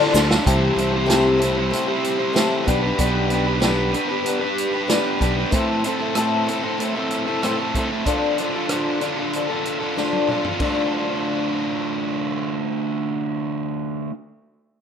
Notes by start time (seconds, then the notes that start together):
Already playing: D3 F3 D4 F4 A4
0.00 D4 F4 A4
0.12 D2 D3 F3 D4 F4, snare, shaker
0.16 A4
0.28 F4 A4, snare
0.33 D4
0.44 C2 C3 E3 G3 A3 C4 E4 G4, kick, closed hi-hat
0.49 C5
0.76 C2 G3 A3 C4 E4 G4, closed hi-hat
0.81 C5
0.90 C4 E4 G4 C5
0.97 G3
1.06 C3 E3 G3 A3 C4 E4 G4, snare, closed hi-hat
1.11 C5
1.38 G3 A3 C4 E4 G4, closed hi-hat
1.44 C5
1.54 C4 E4 G4 C5
1.61 G3
1.71 A3 C4 E4 G4, closed hi-hat
1.86 C4 E4 G4 C5
1.92 G3
2.04 closed hi-hat
2.16 E4 G4 C5
2.21 G3 C4
2.33 C3 E3 A3 C4 E4 G4, snare, closed hi-hat
2.37 G3 C5
2.65 B1 B3 D4 G4 B4, kick, closed hi-hat
2.83 D4 G4 B4
2.98 B1 B3 D4 G4 B4, kick, closed hi-hat
3.30 B3 D4 G4, closed hi-hat
3.34 B4
3.46 G4 B4
3.50 D4
3.60 B3 D4 G4 B4, snare, closed hi-hat
3.92 B3 D4 G4 B4, closed hi-hat
4.07 G4 B4
4.12 D4
4.24 B3 D4 G4, closed hi-hat
4.28 B4
4.39 D4 G4 B4
4.58 closed hi-hat
4.72 D4 G4 B4
4.88 B3 D4 G4 B4, snare, closed hi-hat
5.18 B1 B3 D4 G4, kick, closed hi-hat
5.22 B4
5.37 D4 G4 B4
5.51 A2 E3 A3 C4 E4 A4, kick, closed hi-hat
5.84 A3 C4 E4 A4, closed hi-hat
5.99 A3 C4 E4 A4
6.15 A2 E3 A3 C4 E4 A4, cross-stick, closed hi-hat
6.46 A3 C4 E4 A4, closed hi-hat
6.60 A3 C4 E4 A4
6.78 A3 C4 E4, closed hi-hat
6.82 A4
6.94 C4 E4 A4
6.98 A3
7.11 closed hi-hat
7.27 A3 C4 E4 A4
7.42 A2 E3 A3 C4 E4 A4, cross-stick, closed hi-hat
7.57 A3 C4 E4 A4
7.74 A3 C4 E4 A4, kick, closed hi-hat
7.91 C4 E4 A4
8.05 D3 F3 D4 F4 A4, kick, closed hi-hat
8.37 D3 F3 D4, closed hi-hat
8.43 F4 A4
8.55 D4 F4 A4
8.69 D3 F3 D4 F4 A4, cross-stick, closed hi-hat
9.00 D3 F3 D4 F4, closed hi-hat
9.04 A4
9.17 D4 F4 A4
9.33 F3 D4 F4 A4, closed hi-hat
9.49 D4 F4 A4
9.65 closed hi-hat
9.80 D4 F4 A4
9.96 D3 F3 D4 F4 A4, snare
10.13 high tom
10.28 D3 F3 D4 F4 A4, mid tom
10.44 F4 A4, floor tom
10.49 D4
10.59 D3 F3 A3 D4, kick, crash
10.65 F4 A4